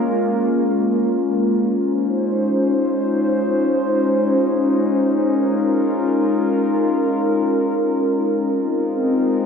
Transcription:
Already playing: G#3 A#3 C#4 F4 A#4
1.77 G#3 D#4 C5
5.16 F4 A#4
8.54 G#3 C4 D#4 F4 A#4

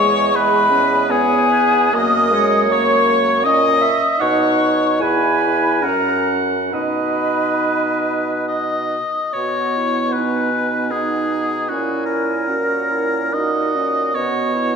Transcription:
Already playing: E2 G#3 C#5 D#5 C#6
0.34 G#3 B4 B5
0.71 C#4
1.09 B3 G#4 C#5 G#5
1.51 B4
1.93 F#2 A#3 A#4 D#5 D#6
2.32 G#3 C#5
2.70 A#3 C#5 C#6
3.44 A#2 C#4 D#5 D#6
3.81 E5
4.19 B2 D#4 C#5 F#5 C#6
5.00 E2 E4 B4 G#5 B5
5.83 F#2 C#4 A#4 F#5 A#5
6.72 B2 D#4 B4 D#5 B5
8.48 D#5
9.33 B2 B3 F#4 C#5 F#5
9.77 E4
10.13 D#4 B4 G#5
10.52 D#4
10.91 D#4 G#4 F#5
11.33 F#5
11.69 A#2 C#4 E4 F#4 G#5
12.06 A#4
12.47 C#4 F#4 F#5
12.91 E4
13.34 D#4 F#4 D#5 F#5
13.76 C#4
14.14 B2 B3 F#4 C#5 F#5
14.54 E4

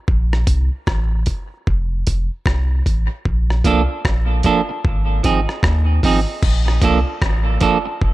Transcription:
0.08 A#1, kick
0.33 cross-stick
0.47 C2, kick, closed hi-hat
0.87 A1, kick, cross-stick
1.26 kick, closed hi-hat
1.67 F1, kick
2.07 F1, kick, closed hi-hat
2.46 C2, kick, cross-stick
2.86 A1, kick, closed hi-hat
3.25 A#1, kick
3.50 cross-stick
3.64 C2 F3 A#3 D4 A4, kick, closed hi-hat
4.05 A#1, kick, cross-stick
4.43 F3 A#3 D4 A4, kick, closed hi-hat
4.69 muted clean electric guitar stroke
4.85 G#1, kick
5.23 G#1 F3 C4 D#4 G#4, kick, closed hi-hat
5.49 cross-stick
5.63 D#2, kick, cross-stick
6.03 G#1 F3 C4 D#4 G#4, kick, open hi-hat
6.43 A#1, kick, crash
6.68 cross-stick
6.82 C2 F3 A#3 D4 A4, kick, closed hi-hat
7.22 A1, kick, cross-stick
7.61 F3 A#3 D4 A4, kick, closed hi-hat
7.85 muted clean electric guitar stroke
8.02 F1, kick

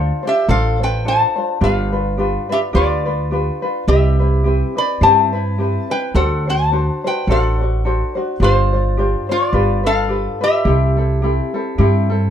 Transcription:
Already playing: D4 F4 A4 C5 D5
0.23 D4 F4 C5
0.27 G4 E5
0.48 A1 D4 F4 A4 C5 F5
0.80 D4 F4 B4 C5 G5
1.05 D4 F4 A4 C5 A5
1.36 D4 F4 C5
1.61 G1 D4 F4 G4 B4 F5
1.65 B4
1.92 D4 F4 B4
2.17 D4 F4 G4 B4
2.49 D4 F4 G4 B4 E5
2.73 D2 D4 F4 G4 B4 D5
3.06 D4 F4 B4
3.31 D4 F4 G4 B4
3.62 D4 F4 B4
3.88 C2 C4 E4 G4 B4 E5
4.20 C4 E4 B4
4.44 C4 E4 G4 B4
4.77 C4 E4 B4 D5 B5
5.01 G2 C4 E4 G4 B4 C5 A5
5.33 C4 E4 B4
5.58 C4 E4 G4 B4
5.90 C4 E4 B4 G5
6.14 D2 D4 F#4 A4 C5 F#5
6.47 D4 F#4 C5 A5
6.72 D4 F#4 A4 C5
7.04 D4 F#4 B4 C5 G5
7.27 A1 D4 F#4 A4 C5
7.32 F#5
7.60 D4 F#4 C5
7.85 D4 F#4 A4 C5
8.15 D4 F#4 C5
8.40 G1 D4 F4 G4 C5
8.44 C5
8.73 D4 F4 C5
8.97 D4 F4 G4 C5
9.29 D4 F4 C5 D5
9.53 G1 D4 F4 G4 B4
9.83 D4 F4 A4 B4 F5
10.08 D4 F4 G4 B4
10.41 D4 F4 G4 B4 E5
10.65 C2 C4 E4 G4 A4
10.97 C4 E4 A4
11.22 C4 E4 G4 A4
11.54 C4 E4 A4
11.78 G2 C4 E4 G4 A4
12.10 C4 E4 A4

